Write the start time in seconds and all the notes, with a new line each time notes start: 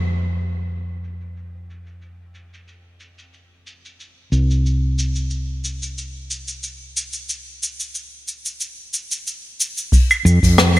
Already playing: F2
0.04 cabasa
0.36 cabasa
0.54 cabasa
0.69 cabasa
1.04 cabasa
1.21 cabasa
1.37 cabasa
1.70 cabasa
1.87 cabasa
2.02 cabasa
2.35 cabasa
2.54 cabasa
2.68 cabasa
3.00 cabasa
3.19 cabasa
3.34 cabasa
3.67 cabasa
3.85 cabasa
4.00 cabasa
4.32 C2, cabasa
4.51 cabasa
4.66 cabasa
4.99 cabasa
5.16 cabasa
5.30 cabasa
5.64 cabasa
5.82 cabasa
5.98 cabasa
6.31 cabasa
6.48 cabasa
6.63 cabasa
6.97 cabasa
7.13 cabasa
7.29 cabasa
7.63 cabasa
7.80 cabasa
7.95 cabasa
8.28 cabasa
8.46 cabasa
8.60 cabasa
8.94 cabasa
9.11 cabasa
9.27 cabasa
9.60 cabasa
9.77 cabasa
9.92 kick, open hi-hat, cabasa
10.11 cabasa, claves
10.25 F2, cabasa
10.43 F2, kick, open hi-hat, cabasa
10.57 cross-stick, open hi-hat, cabasa
10.76 cabasa